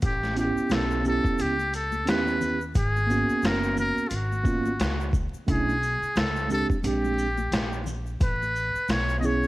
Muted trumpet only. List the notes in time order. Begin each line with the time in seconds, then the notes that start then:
0.05 G4
0.39 G4
0.73 A4
1.08 A4
1.41 G4
1.75 A4
2.09 B4
2.78 G#4
3.47 A#4
3.80 A#4
4.08 F4
4.15 F#4
5.51 G#4
6.18 A4
6.52 A4
6.87 G4
8.23 B4
8.91 C#5
9.20 D#5
9.26 C#5